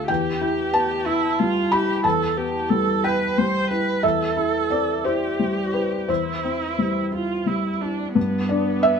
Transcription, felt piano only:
0, 0, Header, 1, 2, 480
1, 0, Start_track
1, 0, Key_signature, 0, "major"
1, 0, Tempo, 658617
1, 62, Time_signature, 6, 3, 24, 8
1, 3423, Tempo, 689655
1, 6416, End_track
2, 0, Start_track
2, 0, Title_t, "Felt piano"
2, 0, Program_c, 0, 0
2, 0, Control_c, 0, 64, 127
2, 0, Note_on_c, 0, 38, 41
2, 0, Note_on_c, 0, 57, 34
2, 0, Note_on_c, 0, 62, 40
2, 0, Note_on_c, 0, 65, 37
2, 0, Note_on_c, 0, 76, 59
2, 0, Note_on_c, 0, 77, 60
2, 59, Note_on_c, 0, 79, 76
2, 69, Note_on_c, 0, 40, 45
2, 76, Control_c, 0, 64, 0
2, 78, Note_off_c, 0, 77, 0
2, 79, Note_off_c, 0, 57, 0
2, 79, Note_off_c, 0, 65, 0
2, 79, Note_off_c, 0, 76, 0
2, 81, Note_off_c, 0, 38, 0
2, 83, Note_off_c, 0, 62, 0
2, 201, Control_c, 0, 64, 127
2, 301, Note_on_c, 0, 64, 43
2, 506, Note_off_c, 0, 79, 0
2, 536, Note_on_c, 0, 81, 74
2, 537, Note_on_c, 0, 59, 44
2, 681, Note_off_c, 0, 64, 0
2, 773, Note_on_c, 0, 64, 41
2, 919, Note_off_c, 0, 59, 0
2, 1019, Note_on_c, 0, 55, 37
2, 1155, Note_off_c, 0, 64, 0
2, 1221, Note_off_c, 0, 81, 0
2, 1251, Note_on_c, 0, 83, 79
2, 1256, Note_on_c, 0, 64, 41
2, 1396, Note_off_c, 0, 55, 0
2, 1463, Note_off_c, 0, 40, 0
2, 1472, Note_off_c, 0, 83, 0
2, 1486, Note_on_c, 0, 81, 72
2, 1489, Note_on_c, 0, 40, 50
2, 1501, Control_c, 0, 64, 0
2, 1608, Control_c, 0, 64, 127
2, 1635, Note_off_c, 0, 64, 0
2, 1727, Note_on_c, 0, 59, 44
2, 1969, Note_on_c, 0, 55, 45
2, 2114, Note_off_c, 0, 59, 0
2, 2181, Note_off_c, 0, 81, 0
2, 2217, Note_on_c, 0, 64, 42
2, 2217, Note_on_c, 0, 79, 66
2, 2358, Note_off_c, 0, 55, 0
2, 2440, Note_off_c, 0, 79, 0
2, 2464, Note_on_c, 0, 55, 43
2, 2603, Note_off_c, 0, 64, 0
2, 2703, Note_on_c, 0, 64, 35
2, 2845, Note_off_c, 0, 55, 0
2, 2907, Note_off_c, 0, 40, 0
2, 2938, Note_on_c, 0, 76, 69
2, 2940, Note_off_c, 0, 64, 0
2, 2943, Note_on_c, 0, 40, 46
2, 2951, Control_c, 0, 64, 0
2, 3058, Control_c, 0, 64, 127
2, 3183, Note_on_c, 0, 64, 46
2, 3396, Note_off_c, 0, 76, 0
2, 3428, Note_on_c, 0, 74, 66
2, 3432, Note_on_c, 0, 60, 35
2, 3570, Note_off_c, 0, 64, 0
2, 3648, Note_off_c, 0, 74, 0
2, 3666, Note_on_c, 0, 72, 55
2, 3668, Note_on_c, 0, 64, 37
2, 3811, Note_off_c, 0, 60, 0
2, 3909, Note_on_c, 0, 55, 32
2, 4053, Note_off_c, 0, 64, 0
2, 4121, Note_off_c, 0, 72, 0
2, 4148, Note_on_c, 0, 71, 49
2, 4153, Note_on_c, 0, 64, 30
2, 4296, Note_off_c, 0, 55, 0
2, 4366, Note_off_c, 0, 40, 0
2, 4374, Note_off_c, 0, 71, 0
2, 4389, Note_on_c, 0, 40, 35
2, 4389, Note_on_c, 0, 72, 51
2, 4404, Control_c, 0, 64, 0
2, 4539, Note_off_c, 0, 64, 0
2, 4543, Control_c, 0, 64, 127
2, 4639, Note_on_c, 0, 60, 32
2, 4877, Note_on_c, 0, 55, 31
2, 5018, Note_off_c, 0, 60, 0
2, 5082, Note_off_c, 0, 72, 0
2, 5109, Note_on_c, 0, 64, 29
2, 5256, Note_off_c, 0, 55, 0
2, 5347, Note_on_c, 0, 55, 27
2, 5495, Note_off_c, 0, 64, 0
2, 5594, Note_on_c, 0, 64, 29
2, 5737, Note_off_c, 0, 55, 0
2, 5805, Note_off_c, 0, 40, 0
2, 5829, Note_on_c, 0, 43, 53
2, 5834, Note_off_c, 0, 64, 0
2, 5846, Control_c, 0, 64, 0
2, 5975, Control_c, 0, 64, 127
2, 6064, Note_on_c, 0, 74, 69
2, 6073, Note_on_c, 0, 62, 53
2, 6286, Note_off_c, 0, 74, 0
2, 6299, Note_on_c, 0, 76, 85
2, 6311, Note_on_c, 0, 59, 48
2, 6416, Note_off_c, 0, 43, 0
2, 6416, Note_off_c, 0, 59, 0
2, 6416, Note_off_c, 0, 62, 0
2, 6416, Note_off_c, 0, 76, 0
2, 6416, End_track
0, 0, End_of_file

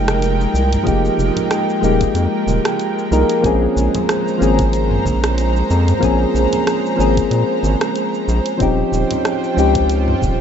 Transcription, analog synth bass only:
0, 0, Header, 1, 2, 480
1, 0, Start_track
1, 0, Tempo, 645161
1, 641, Time_signature, 4, 2, 24, 8
1, 7743, End_track
2, 0, Start_track
2, 0, Title_t, "Analog synth bass"
2, 0, Program_c, 0, 38
2, 0, Note_on_c, 0, 29, 94
2, 349, Note_off_c, 0, 29, 0
2, 401, Note_on_c, 0, 36, 98
2, 575, Note_off_c, 0, 36, 0
2, 644, Note_on_c, 0, 29, 106
2, 816, Note_off_c, 0, 29, 0
2, 879, Note_on_c, 0, 29, 98
2, 972, Note_off_c, 0, 29, 0
2, 1361, Note_on_c, 0, 27, 87
2, 1535, Note_off_c, 0, 27, 0
2, 1596, Note_on_c, 0, 41, 106
2, 1691, Note_off_c, 0, 41, 0
2, 1838, Note_on_c, 0, 27, 94
2, 1932, Note_off_c, 0, 27, 0
2, 2317, Note_on_c, 0, 36, 106
2, 2411, Note_off_c, 0, 36, 0
2, 2560, Note_on_c, 0, 34, 100
2, 2735, Note_off_c, 0, 34, 0
2, 2800, Note_on_c, 0, 34, 106
2, 2893, Note_off_c, 0, 34, 0
2, 3285, Note_on_c, 0, 32, 91
2, 3710, Note_off_c, 0, 32, 0
2, 3761, Note_on_c, 0, 34, 88
2, 4188, Note_off_c, 0, 34, 0
2, 4244, Note_on_c, 0, 41, 100
2, 4416, Note_off_c, 0, 41, 0
2, 4483, Note_on_c, 0, 34, 110
2, 4656, Note_off_c, 0, 34, 0
2, 4720, Note_on_c, 0, 34, 103
2, 4813, Note_off_c, 0, 34, 0
2, 5200, Note_on_c, 0, 32, 87
2, 5374, Note_off_c, 0, 32, 0
2, 5438, Note_on_c, 0, 46, 104
2, 5532, Note_off_c, 0, 46, 0
2, 5678, Note_on_c, 0, 32, 96
2, 5772, Note_off_c, 0, 32, 0
2, 6160, Note_on_c, 0, 34, 105
2, 6253, Note_off_c, 0, 34, 0
2, 6401, Note_on_c, 0, 27, 105
2, 6575, Note_off_c, 0, 27, 0
2, 6637, Note_on_c, 0, 27, 102
2, 6731, Note_off_c, 0, 27, 0
2, 7120, Note_on_c, 0, 37, 84
2, 7548, Note_off_c, 0, 37, 0
2, 7603, Note_on_c, 0, 27, 95
2, 7743, Note_off_c, 0, 27, 0
2, 7743, End_track
0, 0, End_of_file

